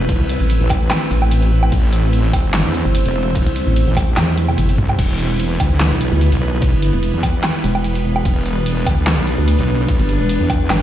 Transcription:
Already playing: E1 A3 C4 E4 B4
0.09 kick, closed hi-hat, ride
0.20 C2
0.29 closed hi-hat
0.40 A1
0.50 closed hi-hat, ride
0.61 A1
0.70 kick, open hi-hat, low woodblock
0.91 snare, clap, closed hi-hat, ride, low woodblock
1.11 A1, closed hi-hat
1.22 low woodblock
1.31 closed hi-hat, ride
1.42 closed hi-hat
1.63 low woodblock
1.72 A1 C5, kick, closed hi-hat, ride
1.93 closed hi-hat
2.13 closed hi-hat, ride
2.33 G1, kick, open hi-hat, low woodblock
2.44 G1
2.54 snare, clap, closed hi-hat, ride
2.65 E2
2.74 closed hi-hat
2.85 G1
2.95 closed hi-hat, ride
3.06 E1, closed hi-hat
3.35 kick, closed hi-hat, ride
3.46 C2, closed hi-hat
3.56 closed hi-hat
3.67 A1
3.76 closed hi-hat, ride
3.87 A1
3.97 kick, open hi-hat, low woodblock
4.17 E2, snare, clap, closed hi-hat, high tom, ride, low woodblock
4.28 high tom
4.38 closed hi-hat, high tom
4.49 mid tom, low woodblock
4.58 G1, closed hi-hat, mid tom, ride
4.69 closed hi-hat
4.78 C2, kick, mid tom
4.89 mid tom, low woodblock
4.99 E1 G3 B3 E4 B4, kick, closed hi-hat, crash, ride
5.19 closed hi-hat
5.40 closed hi-hat, ride
5.60 D2, kick, open hi-hat, low woodblock
5.71 D2
5.80 snare, clap, closed hi-hat, ride
5.91 B1
6.01 closed hi-hat
6.12 D2
6.21 closed hi-hat, ride
6.32 B1, closed hi-hat
6.62 kick, closed hi-hat, ride
6.73 G1
6.82 closed hi-hat
6.93 E1
7.03 closed hi-hat, ride
7.14 E2
7.23 kick, open hi-hat, low woodblock
7.44 snare, clap, closed hi-hat, ride, low woodblock
7.64 E1, closed hi-hat
7.75 low woodblock
7.84 closed hi-hat, ride
7.95 closed hi-hat
8.16 low woodblock
8.25 E1 D4, kick, closed hi-hat, ride
8.46 closed hi-hat
8.66 closed hi-hat, ride
8.86 D2, kick, open hi-hat, low woodblock
8.97 D2
9.07 snare, clap, closed hi-hat, ride
9.18 B1
9.27 closed hi-hat
9.38 D2
9.48 closed hi-hat, ride
9.59 B1, closed hi-hat
9.88 kick, closed hi-hat, ride
9.99 G1, closed hi-hat
10.09 closed hi-hat
10.20 E1
10.29 closed hi-hat, ride
10.40 E2
10.50 kick, open hi-hat, low woodblock
10.70 G1, snare, clap, closed hi-hat, ride, low woodblock

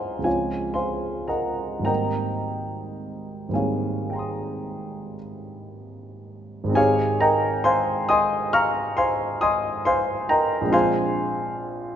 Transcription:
Already playing: C#2 F3 G#3 C4 D#4 G#4 A#4 C5 C#5 D#5 F5 F#5 G#5 A#5 C6
0.19 C#2 F3 G#3
0.23 C4 F4 G#4 C#5 F5 G#5
0.74 C5 F5 G#5 C6
1.28 A#4 D#5 F#5 A#5
1.80 G#1 G3 A#3
1.84 C4 D#4 A#4 D#5 G5 A#5
3.49 G#1 G3 A#3
3.53 C4 D#4 G#4 C#5 F5 G#5
4.10 G5 A#5
4.16 C6 D#6
6.64 G#1 G#3
6.69 C4 D#4
6.75 G4 G#4 C#5 F5 G#5
7.20 A#4 D#5 G5 A#5
7.64 C5 F5 G#5 C6
8.09 D#5 G#5 C6 D#6
8.53 F5 A#5 C#6 F6
8.97 C5 F5 G#5 C6
9.41 D#5 G#5 C6 D#6
9.85 C5 F5 G#5 C6
10.29 A#4 D#5 G5 A#5
10.61 A#1 G#3
10.66 C4 D4
10.72 F4 C5 F5 G#5 C6

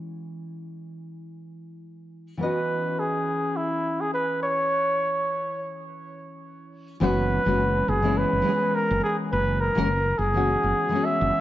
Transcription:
Already playing: E3 G#3 B3 C#4 F#4
2.37 E3 B3 C#4 B4
2.42 F#4 D#5
2.99 G#4
3.56 E4
4.01 G#4
4.14 B4
4.42 C#5
7.00 F#1 E3 G#3 B3 C#4 F#4 B4
7.45 F#1 E3 G#3 B3 C#4 F#4
7.88 F#1 G#4
8.02 E3 G#3 B3 C#4 E4
8.17 B4
8.33 F#1
8.42 E3 G#3 B3
8.47 C#4 G#4
8.75 A#4
8.91 F#1
9.04 G#4
9.32 F#1 B4
9.60 A#4
9.75 F#1 E3 G#3 B3 C#4 A#4
10.18 F#1 G#4
10.34 E3 G#3 B3 C#4 F#4
10.63 F#1
10.89 E3 G#3 B3
10.94 C#4 F#4
11.05 E5
11.21 F#1

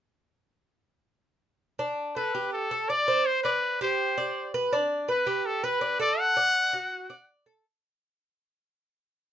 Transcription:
1.79 D4
2.15 A4 B4
2.35 G4
2.53 A4
2.71 A4
2.89 D5
3.08 C5
3.26 C5
3.43 B4 D5
3.81 G4 C5
4.18 D5
4.54 B4
4.73 D4
5.08 B4
5.27 G4
5.46 A4
5.64 B4
5.81 D5
6.00 A4 D5
6.20 F#5
6.37 D5
6.73 F#4
7.10 D5
7.46 A4

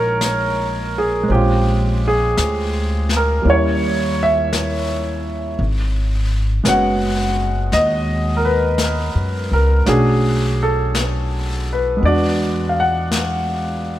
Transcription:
Already playing: A#1 F#3 G#3 A#3 C#4 D#4 F4 A#4 C#5 D#5
0.21 brush sweep, snare, hi-hat pedal
0.98 G#4
1.23 G#3
1.28 A#1 C4 C#4 G4, brush sweep
1.35 F4
2.08 G#4
2.37 D2, brush sweep, snare, hi-hat pedal
3.09 snare
3.17 A#4
3.42 D#2 G3 A#3 C#4, brush sweep
3.47 E4 C#5
4.23 E5
4.53 brush sweep, snare, hi-hat pedal
5.59 G#1, brush sweep
6.64 F#1 G#3 B3 C#4, brush sweep, snare, hi-hat pedal
6.68 F#4 F#5
7.72 D#2 D#5, brush sweep, snare
8.37 A#4
8.45 B4
8.78 brush sweep, snare, hi-hat pedal
9.15 F#2
9.52 C#2 A#4
9.85 B1 A3 C#4 D4 F#4 G#4, brush sweep, snare
10.63 A4
10.95 brush sweep, snare, hi-hat pedal
11.73 B4
11.97 G#3 B3
12.02 E2 D4 D5, brush sweep
12.07 F#4
12.69 F5
12.80 F#5
13.11 brush sweep, snare, hi-hat pedal

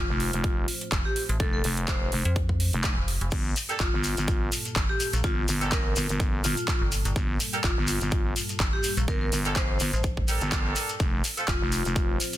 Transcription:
Already playing: A3 F4 C5
0.09 F1
0.20 open hi-hat
0.33 F1, closed hi-hat
0.44 kick, closed hi-hat
0.68 open hi-hat
0.81 closed hi-hat
0.92 F1, kick, clap, closed hi-hat
1.05 G4
1.16 open hi-hat
1.29 A1, closed hi-hat
1.40 F1 A4, kick, closed hi-hat
1.53 A4
1.64 F1, open hi-hat
1.77 closed hi-hat
1.88 C5, kick, clap, closed hi-hat
2.12 F1, open hi-hat
2.25 F2, closed hi-hat
2.36 kick, closed hi-hat
2.49 kick
2.60 open hi-hat
2.73 F1, closed hi-hat
2.84 kick, clap, closed hi-hat
2.97 F1
3.08 open hi-hat
3.21 F1, closed hi-hat
3.31 G1 G3 A#3 A5, kick, closed hi-hat, crash, shekere
3.56 open hi-hat, shekere
3.69 A#3 D4 G4 A4, closed hi-hat, shekere
3.80 G1 F4, kick, clap, closed hi-hat, shekere
3.93 G1
4.04 open hi-hat, shekere
4.17 G1, closed hi-hat, shekere
4.28 kick, closed hi-hat, shekere
4.52 open hi-hat, shekere
4.65 closed hi-hat, shekere
4.76 G1, kick, clap, closed hi-hat, shekere
4.89 G4
5.00 open hi-hat, shekere
5.13 A#1, closed hi-hat, shekere
5.24 G1 F4, kick, closed hi-hat, shekere
5.48 G1, open hi-hat, shekere
5.61 A#3 D4 G4 A4, closed hi-hat, shekere
5.72 A#4, kick, clap, closed hi-hat, shekere
5.96 G1, open hi-hat, shekere
6.09 G1, closed hi-hat, shekere
6.20 kick, closed hi-hat, shekere
6.44 G1 F4, open hi-hat, shekere
6.57 closed hi-hat, shekere
6.68 kick, clap, closed hi-hat, shekere
6.81 G1
6.92 open hi-hat, shekere
7.05 G1, closed hi-hat, shekere
7.16 G1, kick, closed hi-hat, shekere
7.40 open hi-hat, shekere
7.53 A#3 D4 G4 A4, closed hi-hat, shekere
7.64 G1 F4, kick, clap, closed hi-hat, shekere
7.77 G1
7.87 open hi-hat, shekere
8.01 G1, closed hi-hat, shekere
8.11 kick, closed hi-hat, shekere
8.36 open hi-hat, shekere
8.49 closed hi-hat, shekere
8.60 G1, kick, clap, closed hi-hat, shekere
8.73 G4
8.83 open hi-hat, shekere
8.97 A#1, closed hi-hat, shekere
9.08 G1 A#4, kick, closed hi-hat, shekere
9.21 A#4
9.32 G1, open hi-hat, shekere
9.45 A#3 D4 G4 A4, closed hi-hat, shekere
9.56 C5, kick, clap, closed hi-hat, shekere
9.80 G1, open hi-hat, shekere
9.93 A1, closed hi-hat, shekere
10.03 kick, closed hi-hat, shekere
10.17 kick
10.28 A#3 D4 G4 A4, open hi-hat, shekere
10.41 G1, closed hi-hat, shekere
10.52 kick, clap, closed hi-hat, shekere
10.76 open hi-hat, shekere
10.89 closed hi-hat, shekere
11.00 F1 A3 F4 C5, kick, closed hi-hat, shekere
11.24 open hi-hat, shekere
11.37 A3 C4 F4 A4, closed hi-hat, shekere
11.48 F1 F4, kick, clap, closed hi-hat, shekere
11.61 F1
11.72 open hi-hat, shekere
11.85 F1, closed hi-hat, shekere
11.96 kick, closed hi-hat, shekere
12.20 open hi-hat, shekere
12.33 closed hi-hat, shekere

